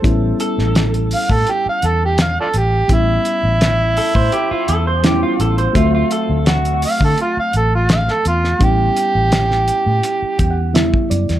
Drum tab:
HH |x-x-xxo-x-x-x-x-|x-x-x-o-x-x-x-xx|x-x-xxo-x-x-x-x-|x-x-x-x-x-x-x-xx|
SD |---oo-------o---|----o-------o---|----o-------oo-o|----oo------o--o|
BD |o------o--------|o------o--------|o------o--------|o---------o--o--|